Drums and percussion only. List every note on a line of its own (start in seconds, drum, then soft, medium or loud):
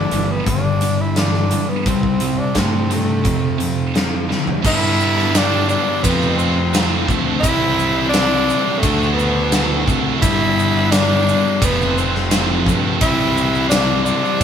0.11 closed hi-hat medium
0.46 kick medium
0.46 closed hi-hat medium
0.81 closed hi-hat medium
1.16 snare medium
1.16 closed hi-hat medium
1.34 snare soft
1.51 closed hi-hat medium
1.86 kick loud
1.86 closed hi-hat medium
2.03 kick medium
2.20 closed hi-hat medium
2.55 kick medium
2.55 snare loud
2.55 closed hi-hat medium
2.91 closed hi-hat medium
3.25 kick loud
3.25 closed hi-hat medium
3.60 closed hi-hat medium
3.95 snare medium
3.95 closed hi-hat medium
4.31 snare medium
4.47 floor tom medium
4.64 kick loud
4.64 crash loud
4.64 shaker loud
5.00 shaker medium
5.17 snare soft
5.35 snare loud
5.35 ride bell medium
5.35 shaker loud
5.69 shaker medium
6.04 kick loud
6.04 ride bell medium
6.04 shaker medium
6.22 shaker soft
6.39 shaker medium
6.74 snare loud
6.74 ride bell medium
6.74 shaker loud
7.09 kick medium
7.09 shaker medium
7.43 kick loud
7.43 ride bell medium
7.43 shaker medium
7.79 shaker medium
8.14 snare loud
8.14 ride bell medium
8.14 shaker medium
8.50 shaker medium
8.83 kick loud
8.83 ride bell medium
8.83 shaker medium
9.03 shaker soft
9.19 shaker medium
9.52 snare loud
9.52 ride bell medium
9.52 shaker medium
9.88 kick medium
9.88 shaker medium
10.22 kick loud
10.22 ride bell medium
10.22 shaker medium
10.59 shaker medium
10.92 snare loud
10.92 ride bell medium
10.92 shaker medium
11.29 shaker medium
11.62 kick loud
11.62 ride bell medium
11.62 shaker loud
11.81 shaker soft
11.98 shaker medium
12.15 snare soft
12.31 snare loud
12.31 ride bell medium
12.31 shaker loud
12.66 kick medium
12.66 shaker medium
13.01 kick loud
13.01 ride bell medium
13.01 shaker medium
13.20 shaker soft
13.37 shaker medium
13.55 shaker soft
13.71 snare loud
13.71 ride bell medium
13.71 shaker loud
14.06 shaker medium
14.26 shaker soft